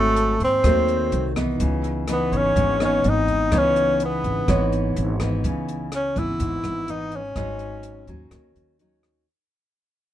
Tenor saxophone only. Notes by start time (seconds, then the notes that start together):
Already playing: A3
0.44 C4
2.12 B3
2.37 C#4
2.85 C#4
3.09 D#4
3.59 C#4
4.05 B3
5.96 C#4
6.19 E4
6.91 D#4
7.16 C#4